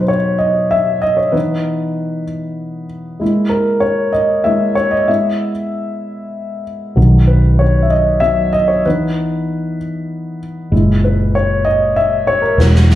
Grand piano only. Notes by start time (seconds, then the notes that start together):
Already playing: F#3 B3 D#4 B4
0.01 C5
0.08 C#5
0.38 D#5
0.71 E5
1.02 D#5
1.17 C#5
1.32 E3 B3 D#4 B4
3.20 G#3 A#3 E4
3.49 A#4
3.80 C#5
4.13 D#5
4.44 G#3 A#3 E4 E5
4.75 C#5
4.91 D#5
5.08 G#3 B3 E4 E5
6.96 D#3 F#3 B3
7.27 B4
7.59 C#5
7.83 E5
7.90 D#5
8.20 F#3 B3 D#5 E5
8.53 D#5
8.68 C#5
8.86 E3 B3 D#4 B4
10.72 A#2 G#3 E4
11.04 B4
11.35 C#5
11.65 D#5
11.96 E5
12.27 C#5
12.42 A#4
12.58 G#3 B3 E4 B4